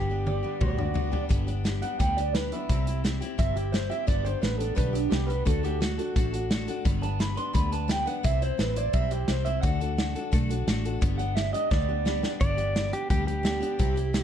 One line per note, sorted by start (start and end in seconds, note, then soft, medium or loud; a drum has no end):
0.00 0.43 G1 medium
0.00 0.64 G4 medium
0.10 0.25 G3 soft
0.10 0.25 B3 soft
0.10 0.26 D4 medium
0.10 0.27 G4 medium
0.26 0.43 G3 medium
0.26 0.43 B3 medium
0.26 0.42 D4 medium
0.26 0.42 G4 medium
0.26 0.61 D5 medium
0.26 high tom medium
0.43 0.60 G3 soft
0.43 0.60 B3 medium
0.43 0.60 D4 soft
0.43 0.60 G4 medium
0.60 1.12 D2 medium
0.60 0.78 G2 medium
0.60 0.78 D3 medium
0.60 0.78 G3 medium
0.60 0.78 B3 medium
0.60 0.77 D4 medium
0.60 1.11 F#4 medium
0.60 0.76 G4 medium
0.60 0.79 D5 medium
0.60 kick loud
0.60 mid tom medium
0.77 0.93 G3 soft
0.77 0.94 B3 soft
0.77 0.95 D4 medium
0.77 0.95 G4 medium
0.77 1.21 D5 medium
0.77 mid tom medium
0.94 1.12 G3 medium
0.94 1.12 B3 medium
0.94 1.11 D4 medium
0.94 1.10 G4 medium
0.94 floor tom loud
1.12 1.28 G3 medium
1.12 1.28 B3 medium
1.12 1.28 D4 medium
1.12 1.29 G4 medium
1.12 floor tom medium
1.29 1.81 G1 medium
1.29 1.47 G2 medium
1.29 1.47 D3 medium
1.29 1.47 G3 medium
1.29 1.47 B3 medium
1.29 1.46 D4 medium
1.29 1.46 G4 medium
1.29 kick loud
1.29 closed hi-hat medium
1.47 1.63 G3 soft
1.47 1.64 B3 medium
1.47 1.64 D4 medium
1.47 1.65 G4 medium
1.47 closed hi-hat medium
1.64 1.82 G3 medium
1.64 1.82 B3 medium
1.64 1.81 D4 medium
1.64 1.80 G4 medium
1.64 snare loud
1.64 closed hi-hat medium
1.82 1.99 G3 soft
1.82 1.99 B3 soft
1.82 1.99 D4 soft
1.82 1.99 G4 soft
1.82 1.99 F#5 medium
1.82 closed hi-hat medium
1.99 2.51 D2 medium
1.99 2.17 G2 medium
1.99 2.17 D3 medium
1.99 2.17 G3 medium
1.99 2.17 B3 medium
1.99 2.17 D4 medium
1.99 2.16 G4 medium
1.99 2.16 G5 loud
1.99 kick loud
1.99 closed hi-hat medium
2.17 2.34 G3 soft
2.17 2.35 B3 soft
2.17 2.35 D4 soft
2.17 2.35 G4 medium
2.17 2.34 D5 medium
2.17 closed hi-hat medium
2.34 2.52 G3 medium
2.34 2.53 B3 medium
2.34 2.53 D4 medium
2.34 2.52 G4 medium
2.34 2.51 B4 medium
2.34 snare loud
2.34 closed hi-hat medium
2.52 2.69 G3 soft
2.52 2.70 B3 soft
2.52 2.70 D4 medium
2.52 3.01 E4 medium
2.52 2.70 G4 soft
2.52 closed hi-hat medium
2.69 3.20 C2 medium
2.69 2.87 C3 medium
2.69 2.87 G3 medium
2.69 2.87 C4 medium
2.69 2.87 E4 medium
2.69 2.86 G4 medium
2.69 kick loud
2.69 closed hi-hat medium
2.87 3.03 C4 soft
2.87 3.03 E4 soft
2.87 3.04 G4 medium
2.87 closed hi-hat medium
3.04 3.21 G3 medium
3.04 3.21 C4 medium
3.04 3.21 E4 medium
3.04 3.19 G4 medium
3.04 snare medium
3.04 closed hi-hat medium
3.21 3.37 C4 soft
3.21 3.38 E4 medium
3.21 3.38 G4 medium
3.21 closed hi-hat medium
3.38 3.90 G1 medium
3.38 3.56 C3 medium
3.38 3.56 G3 medium
3.38 3.56 C4 medium
3.38 3.56 E4 medium
3.38 3.54 G4 medium
3.38 3.56 E5 medium
3.38 kick loud
3.38 closed hi-hat medium
3.56 3.73 C4 soft
3.56 3.73 E4 soft
3.56 3.73 G4 medium
3.56 closed hi-hat medium
3.72 3.90 G3 medium
3.72 3.90 C4 medium
3.72 3.90 E4 medium
3.72 3.88 G4 medium
3.72 3.90 C5 medium
3.72 snare loud
3.72 closed hi-hat medium
3.89 4.07 C4 soft
3.89 4.07 E4 soft
3.89 4.06 G4 medium
3.89 4.07 E5 medium
3.89 closed hi-hat medium
4.07 4.34 G1 loud
4.07 4.25 G2 medium
4.07 4.25 D3 medium
4.07 4.25 G3 medium
4.07 4.24 B3 medium
4.07 4.24 D4 medium
4.07 4.23 G4 medium
4.07 4.25 D5 medium
4.07 kick loud
4.07 closed hi-hat medium
4.25 4.40 G3 soft
4.25 4.41 B3 medium
4.25 4.41 D4 soft
4.25 4.42 G4 medium
4.25 4.42 C5 loud
4.25 closed hi-hat medium
4.41 4.72 A1 medium
4.41 4.60 G3 medium
4.41 4.59 B3 medium
4.41 4.59 D4 medium
4.41 4.58 G4 medium
4.41 4.57 B4 medium
4.41 snare loud
4.41 closed hi-hat medium
4.58 4.75 G3 soft
4.58 4.75 B3 soft
4.58 4.75 D4 medium
4.58 4.75 G4 medium
4.58 4.76 A4 medium
4.58 closed hi-hat medium
4.75 5.07 B1 medium
4.75 4.94 G2 medium
4.75 4.94 D3 medium
4.75 4.94 G3 medium
4.75 4.93 B3 medium
4.75 4.93 D4 medium
4.75 4.92 G4 medium
4.75 4.94 B4 loud
4.75 kick loud
4.75 closed hi-hat medium
4.93 5.09 G3 soft
4.93 5.10 B3 soft
4.93 5.11 D4 soft
4.93 5.11 G4 medium
4.93 closed hi-hat medium
5.10 5.41 C2 medium
5.10 5.28 G3 medium
5.10 5.28 B3 medium
5.10 5.27 D4 medium
5.10 5.28 G4 medium
5.10 5.26 G4 medium
5.10 snare loud
5.10 closed hi-hat medium
5.27 5.45 G3 soft
5.27 5.45 B3 medium
5.27 5.44 D4 medium
5.27 5.46 G4 medium
5.27 5.45 B4 medium
5.27 closed hi-hat medium
5.45 5.98 D2 loud
5.45 5.63 D3 medium
5.45 5.64 A3 medium
5.45 5.64 D4 medium
5.45 5.63 F#4 medium
5.45 5.63 A4 medium
5.45 5.62 A4 medium
5.45 kick loud
5.45 closed hi-hat medium
5.63 5.80 D4 soft
5.63 5.81 F#4 medium
5.63 5.80 G4 medium
5.63 5.81 A4 medium
5.63 closed hi-hat medium
5.81 5.99 A3 medium
5.81 5.99 D4 medium
5.81 5.98 F#4 medium
5.81 5.97 F#4 medium
5.81 5.97 A4 medium
5.81 snare loud
5.81 closed hi-hat medium
5.98 6.15 D4 soft
5.98 6.15 F#4 soft
5.98 6.47 F#4 medium
5.98 6.15 A4 medium
5.98 closed hi-hat medium
6.16 6.67 A1 medium
6.16 6.33 D3 medium
6.16 6.33 A3 medium
6.16 6.33 D4 medium
6.16 6.33 F#4 medium
6.16 6.31 A4 medium
6.16 kick loud
6.16 closed hi-hat medium
6.33 6.50 D4 soft
6.33 6.51 F#4 soft
6.33 6.51 A4 medium
6.33 closed hi-hat medium
6.51 6.68 A3 medium
6.51 6.68 D4 medium
6.51 6.67 F#4 medium
6.51 6.66 A4 medium
6.51 snare loud
6.51 closed hi-hat medium
6.67 6.84 D4 medium
6.67 6.85 F#4 medium
6.67 6.85 A4 medium
6.67 closed hi-hat medium
6.85 7.36 G1 loud
6.85 7.03 G2 medium
6.85 7.03 D3 medium
6.85 7.03 G3 medium
6.85 7.02 B3 medium
6.85 7.01 D4 medium
6.85 7.00 B4 medium
6.85 kick loud
6.85 closed hi-hat medium
7.01 7.18 G3 soft
7.01 7.18 B3 soft
7.01 7.19 D4 medium
7.01 7.20 B4 medium
7.01 7.20 A5 loud
7.01 closed hi-hat medium
7.19 7.37 G3 soft
7.19 7.36 B3 medium
7.19 7.36 D4 medium
7.19 7.34 B4 medium
7.19 7.37 B5 medium
7.19 snare loud
7.19 closed hi-hat medium
7.36 7.53 G3 soft
7.36 7.53 B3 medium
7.36 7.53 D4 soft
7.36 7.53 B4 medium
7.36 7.54 C6 loud
7.36 closed hi-hat medium
7.53 8.06 D2 medium
7.53 7.72 G2 medium
7.53 7.72 D3 medium
7.53 7.72 G3 medium
7.53 7.71 B3 medium
7.53 7.71 D4 medium
7.53 7.70 B4 medium
7.53 7.71 B5 medium
7.53 kick loud
7.53 closed hi-hat medium
7.72 7.87 G3 soft
7.72 7.87 B3 soft
7.72 7.88 D4 soft
7.72 7.89 B4 medium
7.72 7.89 A5 medium
7.72 closed hi-hat medium
7.88 8.06 G3 medium
7.88 8.06 B3 medium
7.88 8.05 D4 medium
7.88 8.05 B4 medium
7.88 8.06 G5 loud
7.88 snare loud
7.88 closed hi-hat medium
8.06 8.22 G3 medium
8.06 8.24 B3 medium
8.06 8.24 D4 medium
8.06 8.24 B4 medium
8.06 8.24 F#5 medium
8.06 closed hi-hat medium
8.23 8.50 C2 loud
8.23 8.41 C3 medium
8.23 8.41 G3 medium
8.23 8.41 C4 medium
8.23 8.41 E4 medium
8.23 8.39 C5 medium
8.23 8.41 E5 medium
8.23 kick loud
8.23 closed hi-hat medium
8.40 8.57 C4 soft
8.40 8.58 E4 medium
8.40 8.58 C5 medium
8.40 8.61 C5 loud
8.40 closed hi-hat medium
8.58 8.89 A1 medium
8.58 8.76 G3 soft
8.58 8.76 C4 medium
8.58 8.75 E4 medium
8.58 8.77 B4 medium
8.58 8.75 C5 medium
8.58 snare loud
8.58 closed hi-hat medium
8.76 8.93 C4 soft
8.76 8.93 E4 medium
8.76 8.93 C5 medium
8.76 8.94 D5 medium
8.76 closed hi-hat medium
8.93 9.23 B1 medium
8.93 9.11 C3 medium
8.93 9.11 G3 medium
8.93 9.11 C4 medium
8.93 9.11 E4 medium
8.93 9.09 C5 medium
8.93 9.10 E5 medium
8.93 kick loud
8.93 closed hi-hat medium
9.10 9.28 C4 soft
9.10 9.28 E4 soft
9.10 9.28 G4 medium
9.10 9.28 C5 medium
9.10 closed hi-hat medium
9.28 9.58 C2 medium
9.28 9.46 G3 medium
9.28 9.46 C4 medium
9.28 9.45 E4 medium
9.28 9.45 C5 medium
9.28 9.44 C5 medium
9.28 snare loud
9.28 closed hi-hat medium
9.45 9.63 C4 soft
9.45 9.63 E4 soft
9.45 9.63 C5 medium
9.45 9.61 E5 medium
9.45 closed hi-hat medium
9.61 10.14 D2 loud
9.61 9.80 D3 medium
9.61 9.81 A3 medium
9.61 9.81 D4 medium
9.61 9.80 F#4 medium
9.61 9.79 A4 medium
9.61 10.28 F#5 medium
9.61 kick loud
9.61 closed hi-hat medium
9.80 9.97 D4 soft
9.80 9.98 F#4 medium
9.80 9.98 A4 medium
9.80 closed hi-hat medium
9.97 10.15 A3 soft
9.97 10.16 D4 medium
9.97 10.15 F#4 medium
9.97 10.14 A4 medium
9.97 snare loud
9.97 closed hi-hat medium
10.15 10.32 D4 soft
10.15 10.32 F#4 medium
10.15 10.32 A4 medium
10.15 closed hi-hat medium
10.31 10.62 B1 medium
10.31 10.49 D3 medium
10.31 10.50 A3 loud
10.31 10.50 D4 medium
10.31 10.49 F#4 medium
10.31 10.48 A4 loud
10.31 kick loud
10.31 closed hi-hat medium
10.49 10.67 D4 medium
10.49 10.68 F#4 medium
10.49 10.67 A4 medium
10.49 closed hi-hat medium
10.67 10.97 A1 medium
10.67 10.85 A3 medium
10.67 10.85 D4 medium
10.67 10.84 F#4 medium
10.67 10.84 A4 medium
10.67 snare loud
10.67 closed hi-hat medium
10.85 11.01 D4 medium
10.85 11.02 F#4 medium
10.85 11.02 A4 medium
10.85 closed hi-hat medium
11.01 11.53 G1 loud
11.01 11.19 G2 medium
11.01 11.19 D3 medium
11.01 11.20 G3 medium
11.01 11.19 B3 loud
11.01 11.18 D4 medium
11.01 11.17 G4 medium
11.01 kick loud
11.01 closed hi-hat medium
11.18 11.34 G3 medium
11.18 11.35 B3 medium
11.18 11.35 D4 medium
11.18 11.36 G4 medium
11.18 11.35 F#5 medium
11.18 closed hi-hat medium
11.35 11.54 G3 medium
11.35 11.53 B3 medium
11.35 11.53 D4 medium
11.35 11.52 G4 medium
11.35 11.53 E5 medium
11.35 snare loud
11.35 closed hi-hat medium
11.53 11.70 G3 soft
11.53 11.70 B3 soft
11.53 11.70 D4 medium
11.53 11.71 G4 medium
11.53 11.70 D#5 loud
11.53 closed hi-hat medium
11.71 12.22 D2 medium
11.71 11.88 G2 medium
11.71 11.89 D3 medium
11.71 11.89 G3 medium
11.71 11.88 B3 medium
11.71 11.88 D4 medium
11.71 11.87 G4 medium
11.71 12.28 D5 medium
11.71 kick loud
11.71 snare medium
11.88 12.04 G3 soft
11.88 12.05 B3 soft
11.88 12.05 D4 soft
11.88 12.06 G4 medium
12.05 12.23 G3 medium
12.05 12.23 B3 medium
12.05 12.22 D4 medium
12.05 12.21 G4 medium
12.05 snare medium
12.23 12.40 G3 medium
12.23 12.39 B3 medium
12.23 12.40 D4 medium
12.23 12.40 G4 medium
12.23 snare medium
12.40 12.92 G1 loud
12.40 12.58 G2 medium
12.40 12.58 D3 medium
12.40 12.58 G3 medium
12.40 12.57 B3 medium
12.40 12.57 D4 medium
12.40 12.56 G4 medium
12.40 12.91 D5 loud
12.40 kick loud
12.40 closed hi-hat medium
12.57 12.74 G3 soft
12.57 12.75 B3 soft
12.57 12.75 D4 medium
12.57 12.75 G4 medium
12.57 closed hi-hat medium
12.75 12.93 G3 medium
12.75 12.93 B3 medium
12.75 12.92 D4 medium
12.75 12.91 G4 medium
12.75 snare loud
12.75 closed hi-hat medium
12.92 13.10 G3 soft
12.92 13.10 B3 soft
12.92 13.10 D4 medium
12.92 13.10 G4 soft
12.92 closed hi-hat medium
13.10 13.61 D2 medium
13.10 13.27 G2 medium
13.10 13.27 D3 medium
13.10 13.28 G3 medium
13.10 13.28 B3 medium
13.10 13.27 D4 medium
13.10 13.26 G4 medium
13.10 kick loud
13.10 closed hi-hat medium
13.28 13.42 G3 soft
13.28 13.43 B3 soft
13.28 13.43 D4 soft
13.28 13.44 G4 soft
13.28 closed hi-hat medium
13.43 13.61 G3 medium
13.43 13.61 B3 medium
13.43 13.60 D4 medium
13.43 13.59 G4 medium
13.43 snare loud
13.43 closed hi-hat medium
13.60 13.78 G3 soft
13.60 13.79 B3 medium
13.60 13.79 D4 medium
13.60 13.79 G4 medium
13.60 closed hi-hat medium
13.79 14.23 C2 medium
13.79 13.96 C3 medium
13.79 13.97 G3 medium
13.79 13.97 C4 loud
13.79 13.96 E4 medium
13.79 13.95 G4 medium
13.79 kick loud
13.79 closed hi-hat medium
13.96 14.13 C4 medium
13.96 14.13 E4 medium
13.96 14.13 G4 medium
13.96 closed hi-hat medium
14.13 14.23 G3 medium
14.13 14.23 C4 medium
14.13 14.23 E4 medium
14.13 14.23 G4 medium
14.13 snare loud
14.13 closed hi-hat medium